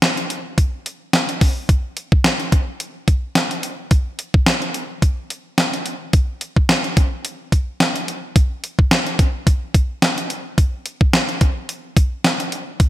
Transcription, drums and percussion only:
0.02 snare, closed hi-hat
0.17 closed hi-hat
0.30 closed hi-hat
0.58 kick, closed hi-hat
0.86 closed hi-hat
1.13 snare, closed hi-hat
1.29 closed hi-hat
1.41 kick, open hi-hat
1.69 kick, closed hi-hat
1.97 closed hi-hat
2.12 kick
2.24 snare, closed hi-hat
2.40 closed hi-hat
2.52 kick, closed hi-hat
2.80 closed hi-hat
3.08 kick, closed hi-hat
3.35 snare, closed hi-hat
3.51 closed hi-hat
3.63 closed hi-hat
3.91 kick, closed hi-hat
4.19 closed hi-hat
4.34 kick
4.46 snare, closed hi-hat
4.62 closed hi-hat
4.74 closed hi-hat
5.02 kick, closed hi-hat
5.30 closed hi-hat
5.58 snare, closed hi-hat
5.74 closed hi-hat
5.86 closed hi-hat
6.13 kick, closed hi-hat
6.41 closed hi-hat
6.56 kick
6.69 snare, closed hi-hat
6.84 closed hi-hat
6.97 kick, closed hi-hat
7.25 closed hi-hat
7.52 kick, closed hi-hat
7.80 snare, closed hi-hat
7.96 closed hi-hat
8.08 closed hi-hat
8.36 kick, closed hi-hat
8.64 closed hi-hat
8.79 kick
8.91 snare, closed hi-hat
9.06 closed hi-hat
9.19 kick, closed hi-hat
9.47 kick, closed hi-hat
9.74 kick, closed hi-hat
10.02 snare, closed hi-hat
10.18 closed hi-hat
10.30 closed hi-hat
10.58 kick, closed hi-hat
10.86 closed hi-hat
11.01 kick
11.13 snare, closed hi-hat
11.29 closed hi-hat
11.41 kick, closed hi-hat
11.69 closed hi-hat
11.97 kick, closed hi-hat
12.24 snare, closed hi-hat
12.40 closed hi-hat
12.52 closed hi-hat
12.80 kick, closed hi-hat

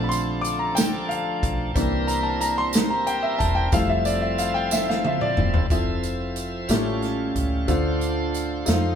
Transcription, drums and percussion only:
0.11 closed hi-hat, tambourine
0.44 closed hi-hat, tambourine
0.77 snare, closed hi-hat, tambourine
1.11 closed hi-hat
1.43 kick, closed hi-hat
1.76 kick, closed hi-hat, tambourine
2.08 closed hi-hat, tambourine
2.41 closed hi-hat, tambourine
2.73 snare, closed hi-hat, tambourine
3.07 closed hi-hat
3.40 kick, closed hi-hat
3.72 kick, closed hi-hat, tambourine
4.05 closed hi-hat, tambourine
4.38 closed hi-hat, tambourine
4.71 snare, tambourine
4.90 snare
5.05 high tom
5.21 mid tom
5.37 mid tom
5.54 floor tom
5.70 kick, closed hi-hat, tambourine
6.03 closed hi-hat, tambourine
6.36 closed hi-hat, tambourine
6.69 snare, closed hi-hat, tambourine
7.02 snare, closed hi-hat
7.36 kick, closed hi-hat
7.68 kick, closed hi-hat, tambourine
8.01 closed hi-hat, tambourine
8.34 closed hi-hat, tambourine
8.66 snare, closed hi-hat, tambourine

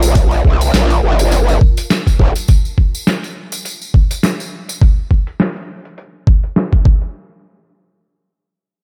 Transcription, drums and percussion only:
0.02 closed hi-hat, tambourine
0.15 kick, closed hi-hat, tambourine
0.31 tambourine
0.45 kick
0.61 closed hi-hat, tambourine
0.74 snare, closed hi-hat, tambourine
0.90 closed hi-hat, tambourine
1.19 closed hi-hat, tambourine
1.32 closed hi-hat, tambourine
1.48 tambourine
1.61 kick
1.77 closed hi-hat, tambourine
1.90 snare, closed hi-hat, tambourine
2.07 kick, closed hi-hat, tambourine
2.19 kick
2.35 closed hi-hat, tambourine
2.48 kick, closed hi-hat, tambourine
2.65 tambourine
2.78 kick
2.95 tambourine
3.07 snare, closed hi-hat, tambourine
3.23 closed hi-hat, tambourine
3.52 closed hi-hat, tambourine
3.65 closed hi-hat, tambourine
3.82 tambourine
3.94 kick
4.11 closed hi-hat, tambourine
4.23 snare, closed hi-hat, tambourine
4.40 closed hi-hat, tambourine
4.69 closed hi-hat, tambourine
4.81 kick, closed hi-hat
5.11 kick
5.27 closed hi-hat
5.40 snare, closed hi-hat
5.56 closed hi-hat
5.85 closed hi-hat
5.98 closed hi-hat
6.27 kick
6.44 closed hi-hat
6.56 snare, closed hi-hat
6.73 kick, closed hi-hat
6.85 kick
7.02 closed hi-hat

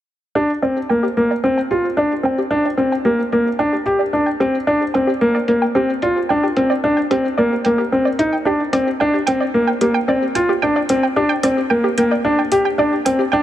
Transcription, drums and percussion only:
0.63 closed hi-hat
1.17 closed hi-hat
1.71 closed hi-hat
2.25 closed hi-hat
2.78 closed hi-hat
3.32 closed hi-hat
3.86 closed hi-hat
4.41 closed hi-hat
4.94 closed hi-hat
5.48 closed hi-hat
6.02 closed hi-hat
6.57 closed hi-hat
7.11 closed hi-hat
7.65 closed hi-hat
8.19 closed hi-hat
8.73 closed hi-hat
9.27 closed hi-hat
9.81 closed hi-hat
10.35 closed hi-hat
10.89 closed hi-hat
11.43 closed hi-hat
11.98 closed hi-hat
12.52 closed hi-hat
13.06 closed hi-hat

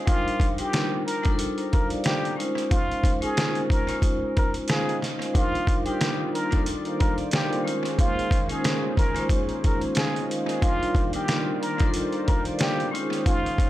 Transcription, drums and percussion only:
0.07 kick, closed hi-hat
0.28 closed hi-hat
0.40 kick, closed hi-hat
0.58 closed hi-hat
0.73 snare, closed hi-hat
1.08 closed hi-hat
1.25 kick, closed hi-hat
1.39 closed hi-hat
1.58 closed hi-hat
1.73 kick, closed hi-hat
1.90 closed hi-hat
2.04 snare, closed hi-hat
2.25 closed hi-hat
2.40 closed hi-hat
2.58 closed hi-hat
2.71 kick, closed hi-hat
2.91 closed hi-hat
3.04 kick, closed hi-hat
3.22 closed hi-hat
3.37 snare, closed hi-hat
3.55 closed hi-hat
3.70 kick, closed hi-hat
3.88 closed hi-hat
4.02 kick, closed hi-hat
4.37 kick, closed hi-hat
4.54 closed hi-hat
4.68 snare, closed hi-hat
4.89 closed hi-hat
5.02 snare, closed hi-hat
5.22 closed hi-hat
5.35 kick, closed hi-hat
5.55 closed hi-hat
5.67 kick, closed hi-hat
5.86 closed hi-hat
6.01 snare, closed hi-hat
6.35 closed hi-hat
6.52 kick, closed hi-hat
6.66 closed hi-hat
6.85 closed hi-hat
7.00 kick, closed hi-hat
7.18 closed hi-hat
7.31 snare, closed hi-hat
7.53 closed hi-hat
7.68 closed hi-hat
7.85 closed hi-hat
7.99 kick, closed hi-hat
8.19 closed hi-hat
8.31 kick, closed hi-hat
8.49 closed hi-hat
8.64 snare, closed hi-hat
8.97 kick, closed hi-hat
9.16 closed hi-hat
9.29 kick, closed hi-hat
9.49 closed hi-hat
9.64 kick, closed hi-hat
9.81 closed hi-hat
9.95 snare, closed hi-hat
10.16 closed hi-hat
10.31 closed hi-hat
10.49 closed hi-hat
10.62 kick, closed hi-hat
10.83 closed hi-hat
10.95 kick, closed hi-hat
11.13 closed hi-hat
11.28 snare, closed hi-hat
11.63 closed hi-hat
11.79 kick, closed hi-hat
11.94 closed hi-hat
12.13 closed hi-hat
12.28 kick, closed hi-hat
12.45 closed hi-hat
12.59 snare, closed hi-hat
12.80 closed hi-hat
12.95 closed hi-hat
13.13 closed hi-hat
13.26 kick, closed hi-hat
13.46 closed hi-hat
13.58 kick, closed hi-hat

